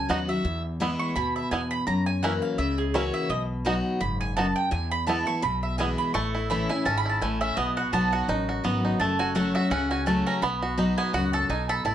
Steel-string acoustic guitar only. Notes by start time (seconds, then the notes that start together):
Already playing: F#2
0.09 F#3 B3 D#4 F#4
0.28 D#4 F#4
0.45 E2
0.80 E3 G#3 B3 E4
1.16 B2
1.51 E2
1.88 F#2
2.23 E3 A#3 C#4 F#4
2.59 C#3
2.94 E3 A#3 C#4 F#4
3.30 B2
3.65 F#3 B3 D#4 F#4
4.01 G#2
4.37 F#2
4.71 E2
5.07 E3 G#3 B3 E4
5.26 B3 E4
5.42 B2
5.78 E3 G#3 B3 E4
6.14 A2
6.50 E3 A3 C#4 E4
6.70 C#4 E4
6.86 G#2
7.22 A2
7.57 B2
7.93 F#3 B3 D#4 F#4
8.29 F#2
8.64 F#3 B3 D#4 F#4
9.00 F#2
9.35 F#3 A3 C#4 F#4
9.71 C#3
10.06 F#3 A3 C#4 F#4
10.42 B2
10.78 F#3 B3 D#4 F#4
11.14 F#2
11.50 B2
11.85 A2